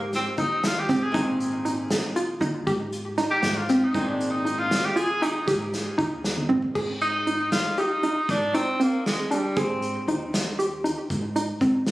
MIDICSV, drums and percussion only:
0, 0, Header, 1, 2, 480
1, 0, Start_track
1, 0, Tempo, 510204
1, 1077, Time_signature, 11, 3, 24, 8
1, 11205, End_track
2, 0, Start_track
2, 0, Title_t, "Drums"
2, 121, Note_on_c, 9, 38, 33
2, 121, Note_on_c, 9, 42, 59
2, 215, Note_off_c, 9, 38, 0
2, 215, Note_off_c, 9, 42, 0
2, 354, Note_on_c, 9, 42, 65
2, 358, Note_on_c, 9, 36, 69
2, 449, Note_off_c, 9, 42, 0
2, 452, Note_off_c, 9, 36, 0
2, 598, Note_on_c, 9, 38, 87
2, 598, Note_on_c, 9, 42, 77
2, 692, Note_off_c, 9, 38, 0
2, 692, Note_off_c, 9, 42, 0
2, 837, Note_on_c, 9, 36, 63
2, 839, Note_on_c, 9, 38, 30
2, 839, Note_on_c, 9, 42, 59
2, 931, Note_off_c, 9, 36, 0
2, 933, Note_off_c, 9, 38, 0
2, 933, Note_off_c, 9, 42, 0
2, 1075, Note_on_c, 9, 42, 88
2, 1076, Note_on_c, 9, 36, 106
2, 1169, Note_off_c, 9, 42, 0
2, 1170, Note_off_c, 9, 36, 0
2, 1319, Note_on_c, 9, 42, 57
2, 1413, Note_off_c, 9, 42, 0
2, 1556, Note_on_c, 9, 42, 58
2, 1650, Note_off_c, 9, 42, 0
2, 1792, Note_on_c, 9, 38, 106
2, 1792, Note_on_c, 9, 42, 77
2, 1886, Note_off_c, 9, 38, 0
2, 1886, Note_off_c, 9, 42, 0
2, 2033, Note_on_c, 9, 42, 54
2, 2127, Note_off_c, 9, 42, 0
2, 2275, Note_on_c, 9, 42, 54
2, 2369, Note_off_c, 9, 42, 0
2, 2511, Note_on_c, 9, 42, 67
2, 2513, Note_on_c, 9, 36, 91
2, 2605, Note_off_c, 9, 42, 0
2, 2607, Note_off_c, 9, 36, 0
2, 2752, Note_on_c, 9, 42, 59
2, 2846, Note_off_c, 9, 42, 0
2, 2989, Note_on_c, 9, 38, 35
2, 2989, Note_on_c, 9, 42, 54
2, 3083, Note_off_c, 9, 38, 0
2, 3083, Note_off_c, 9, 42, 0
2, 3225, Note_on_c, 9, 38, 88
2, 3225, Note_on_c, 9, 42, 65
2, 3319, Note_off_c, 9, 38, 0
2, 3319, Note_off_c, 9, 42, 0
2, 3471, Note_on_c, 9, 38, 34
2, 3471, Note_on_c, 9, 42, 55
2, 3565, Note_off_c, 9, 38, 0
2, 3565, Note_off_c, 9, 42, 0
2, 3711, Note_on_c, 9, 36, 102
2, 3714, Note_on_c, 9, 42, 89
2, 3805, Note_off_c, 9, 36, 0
2, 3808, Note_off_c, 9, 42, 0
2, 3956, Note_on_c, 9, 42, 66
2, 4050, Note_off_c, 9, 42, 0
2, 4199, Note_on_c, 9, 42, 55
2, 4294, Note_off_c, 9, 42, 0
2, 4434, Note_on_c, 9, 38, 98
2, 4434, Note_on_c, 9, 42, 84
2, 4528, Note_off_c, 9, 38, 0
2, 4528, Note_off_c, 9, 42, 0
2, 4673, Note_on_c, 9, 42, 62
2, 4767, Note_off_c, 9, 42, 0
2, 4915, Note_on_c, 9, 42, 63
2, 5009, Note_off_c, 9, 42, 0
2, 5152, Note_on_c, 9, 38, 32
2, 5152, Note_on_c, 9, 42, 77
2, 5153, Note_on_c, 9, 36, 101
2, 5247, Note_off_c, 9, 36, 0
2, 5247, Note_off_c, 9, 38, 0
2, 5247, Note_off_c, 9, 42, 0
2, 5396, Note_on_c, 9, 38, 34
2, 5396, Note_on_c, 9, 42, 65
2, 5490, Note_off_c, 9, 38, 0
2, 5490, Note_off_c, 9, 42, 0
2, 5632, Note_on_c, 9, 36, 73
2, 5635, Note_on_c, 9, 42, 61
2, 5726, Note_off_c, 9, 36, 0
2, 5729, Note_off_c, 9, 42, 0
2, 5874, Note_on_c, 9, 38, 52
2, 5968, Note_off_c, 9, 38, 0
2, 5994, Note_on_c, 9, 48, 59
2, 6088, Note_off_c, 9, 48, 0
2, 6114, Note_on_c, 9, 45, 84
2, 6209, Note_off_c, 9, 45, 0
2, 6232, Note_on_c, 9, 43, 77
2, 6326, Note_off_c, 9, 43, 0
2, 6354, Note_on_c, 9, 36, 106
2, 6354, Note_on_c, 9, 49, 94
2, 6448, Note_off_c, 9, 36, 0
2, 6448, Note_off_c, 9, 49, 0
2, 6596, Note_on_c, 9, 42, 51
2, 6690, Note_off_c, 9, 42, 0
2, 6839, Note_on_c, 9, 42, 53
2, 6933, Note_off_c, 9, 42, 0
2, 7075, Note_on_c, 9, 38, 96
2, 7075, Note_on_c, 9, 42, 74
2, 7169, Note_off_c, 9, 38, 0
2, 7169, Note_off_c, 9, 42, 0
2, 7315, Note_on_c, 9, 42, 51
2, 7409, Note_off_c, 9, 42, 0
2, 7555, Note_on_c, 9, 42, 52
2, 7649, Note_off_c, 9, 42, 0
2, 7798, Note_on_c, 9, 42, 67
2, 7799, Note_on_c, 9, 36, 90
2, 7892, Note_off_c, 9, 42, 0
2, 7893, Note_off_c, 9, 36, 0
2, 8038, Note_on_c, 9, 42, 61
2, 8132, Note_off_c, 9, 42, 0
2, 8284, Note_on_c, 9, 42, 62
2, 8378, Note_off_c, 9, 42, 0
2, 8526, Note_on_c, 9, 38, 87
2, 8526, Note_on_c, 9, 42, 64
2, 8620, Note_off_c, 9, 38, 0
2, 8620, Note_off_c, 9, 42, 0
2, 8762, Note_on_c, 9, 42, 58
2, 8856, Note_off_c, 9, 42, 0
2, 8998, Note_on_c, 9, 42, 84
2, 9001, Note_on_c, 9, 36, 103
2, 9092, Note_off_c, 9, 42, 0
2, 9095, Note_off_c, 9, 36, 0
2, 9240, Note_on_c, 9, 42, 54
2, 9334, Note_off_c, 9, 42, 0
2, 9485, Note_on_c, 9, 42, 56
2, 9579, Note_off_c, 9, 42, 0
2, 9728, Note_on_c, 9, 38, 96
2, 9728, Note_on_c, 9, 42, 76
2, 9822, Note_off_c, 9, 38, 0
2, 9822, Note_off_c, 9, 42, 0
2, 9968, Note_on_c, 9, 42, 53
2, 10062, Note_off_c, 9, 42, 0
2, 10211, Note_on_c, 9, 42, 54
2, 10305, Note_off_c, 9, 42, 0
2, 10445, Note_on_c, 9, 36, 86
2, 10446, Note_on_c, 9, 42, 67
2, 10539, Note_off_c, 9, 36, 0
2, 10540, Note_off_c, 9, 42, 0
2, 10688, Note_on_c, 9, 42, 57
2, 10783, Note_off_c, 9, 42, 0
2, 10923, Note_on_c, 9, 36, 75
2, 10924, Note_on_c, 9, 42, 54
2, 11017, Note_off_c, 9, 36, 0
2, 11018, Note_off_c, 9, 42, 0
2, 11162, Note_on_c, 9, 38, 80
2, 11162, Note_on_c, 9, 42, 61
2, 11205, Note_off_c, 9, 38, 0
2, 11205, Note_off_c, 9, 42, 0
2, 11205, End_track
0, 0, End_of_file